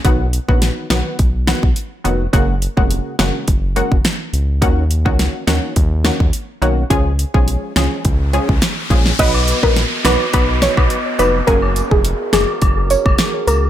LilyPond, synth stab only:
\new Staff \with { instrumentName = "Synth stab" } { \time 4/4 \key ces \lydian \tempo 4 = 105 <dis fis b fis'>16 r8 <dis fis b fis'>8. <dis fis b fis'>8 r8 <dis fis b fis'>16 r8. <dis fis b fis'>16 r16 | <des aes bes ges'>16 r8 <des aes bes ges'>8. <des aes bes ges'>8 r8 <des aes bes ges'>16 r4 r16 | <ees bes des' ges'>16 r8 <ees bes des' ges'>8. <ees bes des' ges'>8 r8 <ees bes des' ges'>16 r8. <ees bes des' ges'>16 r16 | <f aes des' aes'>16 r8 <f aes des' aes'>8. <f aes des' aes'>8 r8 <f aes des' aes'>16 r8. <f aes des' aes'>16 r16 |
<fis b dis' b'>8. <fis b dis' b'>16 r8 <fis b dis' b'>16 r16 <fis b dis' b'>8. <fis b dis' b'>16 r8 <fis b dis' b'>16 r16 | <ges bes des' aes'>4 r2. | }